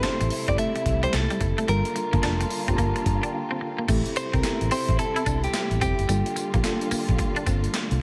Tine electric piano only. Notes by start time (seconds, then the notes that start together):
Already playing: C4 E4 G4 A4
0.48 C4 E4 G4 A4
1.68 A#3 D4 F4 A4
2.13 A#3 D4 F4 A5
2.68 A#3 D4 F4 G4
2.76 A5
3.07 A#5
3.24 G5
3.34 F5
3.88 C4 E4 G4 A4
4.44 B3 E4 G4 A4
4.50 C4
6.09 A#3 D4 F4 A4
6.64 A#3 D4 F4 A4